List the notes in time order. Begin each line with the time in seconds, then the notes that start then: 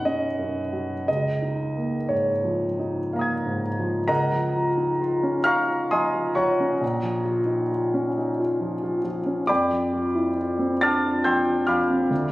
Already playing: B1 F#2 F#3 C#4 D#4 B4 F#5
0.05 C#4 D#5
0.39 F#2
0.73 F#3
1.08 C#2 D#5
1.42 D#4
1.77 A#3
2.09 G#2 C#5
2.44 F3
2.79 D#4
3.13 A#3 F5 A#5
3.19 D#6 G#6
3.46 G#2
3.79 F3
4.08 C#2 A#4 D#5 F#5 A#5
4.32 F3
4.56 F4
4.77 D#4
5.02 F4
5.23 C#4
5.44 D#4 F5 A#5 C#6 F6
5.67 F4
5.91 F3 D#5 G#5 C6 D#6
6.14 F4
6.35 F3 C#5 F#5 A#5 C#6
6.60 C#4
6.81 A#1
7.03 F3
7.25 F4
7.46 D#4
7.72 F4
7.94 C#4
8.18 D#4
8.39 F4
8.61 F3
8.83 F4
9.04 F3
9.26 C#4
9.47 F2 D5 G5 B5 D6
9.70 F3
9.93 F4
10.15 E4
10.38 F4
10.59 C4
10.81 D4 A5 D6 F6 A6
11.07 F4
11.24 F3 G5 C6 E6 G6
11.46 F4
11.67 F3 F5 B5 D6 F6
11.90 C4
12.10 D2